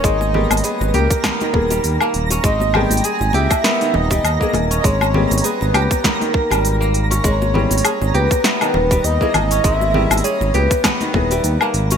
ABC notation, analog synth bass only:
X:1
M:4/4
L:1/16
Q:"Swing 16ths" 1/4=100
K:G#m
V:1 name="Analog synth bass" clef=bass
G,,,3 G,,, z G,,, C,, z3 D,,,2 D,, z D,,,2 | G,,,3 G,,, z G,,, C,, z3 D,,,2 D,, z D,,,2 | G,,,3 G,,, z G,,, C,, z4 G,,,4- G,,, | G,,,3 G,,, z G,,, C,, z3 D,,,2 D,, z G,,,2 |
G,,,3 G,,, z G,,, C,, z3 D,,,2 D,, z G,,,2 |]